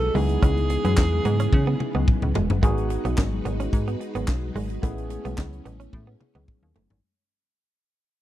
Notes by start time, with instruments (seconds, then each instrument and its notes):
Already playing: fm bass B1, string machine G#3 D#4 F#4 B4, tine electric piano B3 D#4 F#4 G#4, alto saxophone A4
0.02 muted conga, high conga
0.14 fm bass C#2, string machine C#3 E3 B3, clean electric guitar G#3, tine electric piano B3 D#4 E4 G#4, alto saxophone G#4, open hi-hat, high conga, low conga
0.29 closed hi-hat
0.42 fm bass C#2, clean electric guitar C#4, kick, closed hi-hat, muted conga, low conga
0.57 closed hi-hat, muted conga
0.70 muted clean electric guitar stroke, closed hi-hat
0.85 fm bass F#2, clean electric guitar B3, closed hi-hat, high conga
0.97 fm bass E2, muted clean electric guitar stroke, kick, snare, clap
1.12 muted conga, high conga
1.25 fm bass G#2, clean electric guitar B3, closed hi-hat, low conga
1.40 clean electric guitar C#4, closed hi-hat
1.53 fm bass C#3, kick, high tom, muted conga
1.67 clean electric guitar B3, muted conga
1.80 muted clean electric guitar stroke, mid tom
1.95 fm bass C#2, clean electric guitar B3, high conga
2.08 kick, mid tom, muted conga, high conga
2.22 fm bass C#2, mid tom, muted conga, high conga
2.35 fm bass E1, clean electric guitar G#3, floor tom, high conga, low conga
2.50 fm bass F#1, floor tom
2.62 fm bass G#1, string machine G#3 D#4 F#4 B4, clean electric guitar G#3, tine electric piano B3 D#4 F#4 G#4, kick, closed hi-hat, muted conga
2.77 closed hi-hat, muted conga
2.90 muted clean electric guitar stroke, closed hi-hat
3.05 fm bass B1, clean electric guitar B3, closed hi-hat, high conga
3.17 fm bass G#1, muted clean electric guitar stroke, kick, snare, clap, muted conga
3.33 high conga
3.45 fm bass G#1, clean electric guitar B3, closed hi-hat, low conga
3.60 clean electric guitar C#4, closed hi-hat
3.73 fm bass G#2, kick, closed hi-hat, muted conga
3.88 clean electric guitar B3, closed hi-hat
4.01 muted clean electric guitar stroke, closed hi-hat
4.15 fm bass G#1, clean electric guitar B3, closed hi-hat, high conga
4.28 fm bass B1, kick, snare, clap, muted conga, high conga
4.43 muted conga, high conga
4.55 fm bass G#1, clean electric guitar G#3, open hi-hat, high conga, low conga
4.70 closed hi-hat
4.82 fm bass A1, string machine A3 C#4, clean electric guitar A3, tine electric piano B3 C#4 E4 G#4, kick, closed hi-hat, muted conga
4.98 closed hi-hat
5.10 muted clean electric guitar stroke, closed hi-hat
5.25 fm bass B1, clean electric guitar B3, closed hi-hat, high conga
5.38 fm bass C#2, muted clean electric guitar stroke, kick, snare, clap, muted conga
5.53 closed hi-hat, high conga
5.65 fm bass A1, clean electric guitar B3, closed hi-hat, low conga
5.80 clean electric guitar C#4, closed hi-hat
5.93 fm bass A2, kick, high tom, muted conga
6.07 clean electric guitar B3
6.20 muted clean electric guitar stroke, mid tom
6.35 fm bass C#2, clean electric guitar B3, mid tom, high conga
6.48 kick, mid tom, muted conga, high conga
6.63 fm bass D#2, high conga
6.76 fm bass F#1, clean electric guitar A3, floor tom, high conga, low conga
6.90 fm bass G#1, floor tom